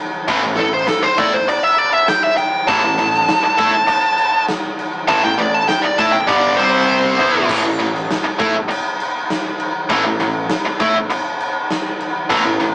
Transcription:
0.28 picked electric bass A1, distorted electric guitar A2 E3, kick, crash
0.43 picked electric bass A1, distorted electric guitar A2 E3
0.57 picked electric bass A1, distorted electric guitar A2 E3, lead electric guitar A4, crash
0.74 lead electric guitar C5
0.87 lead electric guitar A4, snare, crash
1.03 lead electric guitar C5, muted distorted electric guitar stroke, muted picked electric bass stroke
1.18 picked electric bass A2, distorted electric guitar A3 E4, lead electric guitar D5, kick, crash
1.33 lead electric guitar C5, muted distorted electric guitar stroke, muted picked electric bass stroke
1.48 lead electric guitar D5, muted distorted electric guitar stroke, muted picked electric bass stroke, crash
1.63 lead electric guitar E5
1.78 lead electric guitar D5, crash
1.93 lead electric guitar E5
2.08 lead electric guitar G5, snare, crash
2.24 lead electric guitar E5
2.37 lead electric guitar G5, crash
2.67 picked electric bass A1, distorted electric guitar A2 E3, lead electric guitar A5, kick, crash
2.84 picked electric bass A1, distorted electric guitar A2 E3
2.98 picked electric bass A1, distorted electric guitar A2 E3, crash
3.14 snare
3.28 snare, crash
3.43 muted distorted electric guitar stroke, muted picked electric bass stroke
3.58 picked electric bass A2, distorted electric guitar A3 E4, kick, crash
3.73 muted distorted electric guitar stroke, muted picked electric bass stroke
3.87 muted distorted electric guitar stroke, muted picked electric bass stroke, crash
4.18 crash
4.48 snare, crash
4.79 crash
5.08 picked electric bass A1, distorted electric guitar A2 E3, lead electric guitar A5, kick, crash
5.23 picked electric bass A1, distorted electric guitar A2 E3, lead electric guitar G5
5.38 picked electric bass A1, distorted electric guitar A2 E3, lead electric guitar D5, crash
5.54 lead electric guitar A5
5.68 lead electric guitar G5, snare, crash
5.82 lead electric guitar D5, muted distorted electric guitar stroke, muted picked electric bass stroke
5.98 picked electric bass A2, distorted electric guitar A3 E4, lead electric guitar A5, kick, crash
6.12 lead electric guitar G5, muted distorted electric guitar stroke, muted picked electric bass stroke
6.27 picked electric bass G1, distorted electric guitar G2 D3 G3, lead electric guitar D5, kick, crash
6.56 picked electric bass C2, distorted electric guitar C3 G3 C4, lead electric guitar C5, crash
6.89 kick
7.04 kick
7.19 picked electric bass E2, distorted electric guitar E3 B3 E4, mid tom
7.34 floor tom
7.49 picked electric bass A1, distorted electric guitar A2 E3, kick, crash
7.64 picked electric bass A1, distorted electric guitar A2 E3
7.79 picked electric bass A1, distorted electric guitar A2 E3, crash
7.95 snare
8.10 snare, crash
8.24 muted distorted electric guitar stroke, muted picked electric bass stroke
8.39 picked electric bass A2, distorted electric guitar A3 E4, kick, crash
8.53 muted distorted electric guitar stroke, muted picked electric bass stroke
8.68 muted distorted electric guitar stroke, muted picked electric bass stroke, crash
9.00 crash
9.30 snare, crash
9.60 crash
9.89 picked electric bass A1, distorted electric guitar A2 E3, kick, crash
10.04 picked electric bass A1, distorted electric guitar A2 E3
10.20 picked electric bass A1, distorted electric guitar A2 E3, crash
10.49 snare, crash
10.65 muted distorted electric guitar stroke, muted picked electric bass stroke
10.80 picked electric bass A2, distorted electric guitar A3 E4, kick, crash
10.95 muted distorted electric guitar stroke, muted picked electric bass stroke
11.10 muted distorted electric guitar stroke, muted picked electric bass stroke, crash
11.40 crash
11.70 snare, crash
12.00 crash
12.30 picked electric bass A1, distorted electric guitar A2 E3, kick, crash
12.45 picked electric bass A1, distorted electric guitar A2 E3
12.60 picked electric bass A1, distorted electric guitar A2 E3, crash

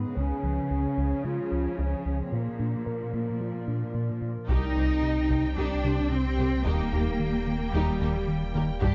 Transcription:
Already playing: cello section G#2, ambient pad D#3 D#4 G#4 B4, french horn section B3
0.15 analog synth bass C#2, cello section C#3, synth pluck C#3, ambient pad F3 C#4 C#5, french horn section C#4
0.43 analog synth bass C#2, synth pluck F3
0.70 analog synth bass C#2, synth pluck C#4
0.97 analog synth bass C#2, synth pluck C#3
1.25 analog synth bass C#3, synth pluck G#3, french horn section F4
1.52 analog synth bass C#2, synth pluck F3
1.78 analog synth bass C#2, synth pluck C#3, french horn section C#4
2.05 analog synth bass C#2
2.21 french horn section C4
2.32 cello section A#2, analog synth bass A#2, french horn section A#3, synth pluck A#3, ambient pad F4 A#4 D5
2.59 analog synth bass A#2, synth pluck D4
2.86 analog synth bass A#2, synth pluck A#4
3.13 analog synth bass A#2, synth pluck A#3
3.41 analog synth bass A#3, synth pluck F4
3.68 analog synth bass A#2, synth pluck D4
3.94 analog synth bass A#2, synth pluck A#3
4.22 analog synth bass A#2
4.48 analog synth bass C2, sub bass C2, double bass section C2, synth pluck C3, ambient pad G3 C4 G4 G5, french horn section C4 G4, cello section D#4, violin section D#4 G5, viola section G4, taiko
4.76 analog synth bass C2, double bass section C2, synth pluck C4, viola section G4, violin section C5
5.03 analog synth bass C3
5.30 analog synth bass C3, taiko
5.57 analog synth bass C2, double bass section C2, synth pluck C3, cello section D4, violin section D#4, viola section G4
5.84 double bass section C2, analog synth bass C3, synth pluck G3, viola section G4, violin section C5
6.11 analog synth bass C3, cello section C4
6.39 double bass section C2, analog synth bass C3, synth pluck G3, viola section G4, violin section C5
6.65 sub bass D#1, analog synth bass D#2, double bass section D#2, synth pluck D#3, cello section A#3, french horn section A#3, ambient pad A#3, violin section D#4, viola section G4
6.93 analog synth bass D#2, double bass section D#2, synth pluck D#4, viola section G4, violin section A#4
7.20 analog synth bass D#3
7.47 analog synth bass D#3
7.73 analog synth bass D#2, double bass section D#2, synth pluck D#3, cello section G3, violin section D#4, viola section G4
8.01 double bass section D#2, analog synth bass D#3, synth pluck A#3, viola section G4, violin section A#4
8.28 analog synth bass D#3
8.55 double bass section D#2, analog synth bass D#3, synth pluck A#3, viola section G4, violin section A#4
8.82 sub bass G1, analog synth bass G2, double bass section G2, synth pluck G3, french horn section B3 G4, violin section D4 G5, cello section G4, viola section G4, taiko

